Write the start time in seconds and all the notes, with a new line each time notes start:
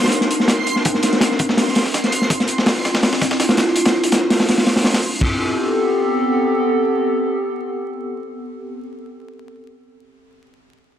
Already playing: C4 D4 D#4 A#4 C6
0.04 snare, open hi-hat
0.07 snare, open hi-hat
0.12 closed hi-hat
0.21 snare, closed hi-hat
0.31 closed hi-hat
0.40 snare
0.48 snare, closed hi-hat
0.58 snare
0.67 closed hi-hat
0.76 snare
0.85 kick, closed hi-hat
0.94 snare
1.03 snare, closed hi-hat
1.13 snare, closed hi-hat
1.21 snare, closed hi-hat
1.31 snare
1.39 kick, closed hi-hat
1.49 snare
1.57 snare, closed hi-hat, open hi-hat
1.68 snare
1.75 snare, closed hi-hat, open hi-hat
1.86 snare
1.94 snare, closed hi-hat
2.04 snare, closed hi-hat
2.12 closed hi-hat
2.22 snare
2.30 D4 E4 F4, kick, closed hi-hat
2.40 snare, closed hi-hat
2.48 closed hi-hat
2.58 snare
2.66 snare, open hi-hat
2.76 snare
2.85 snare, closed hi-hat, open hi-hat
2.94 snare, open hi-hat
3.03 snare, open hi-hat
3.12 snare, open hi-hat
3.21 kick, snare, closed hi-hat, open hi-hat
3.31 snare, open hi-hat
3.40 snare, closed hi-hat
3.49 snare, closed hi-hat
3.57 snare, closed hi-hat, open hi-hat
3.67 snare
3.76 snare, closed hi-hat
3.85 snare, closed hi-hat, open hi-hat
3.94 snare
4.03 snare, closed hi-hat
4.12 snare, closed hi-hat
4.30 snare, closed hi-hat, open hi-hat
4.39 snare, open hi-hat
4.49 snare, closed hi-hat, open hi-hat
4.58 snare, open hi-hat
4.66 snare, closed hi-hat, open hi-hat
4.76 snare, open hi-hat
4.84 snare, open hi-hat
4.94 snare, open hi-hat
5.03 closed hi-hat
5.21 B3 C4 G4 A4, kick, china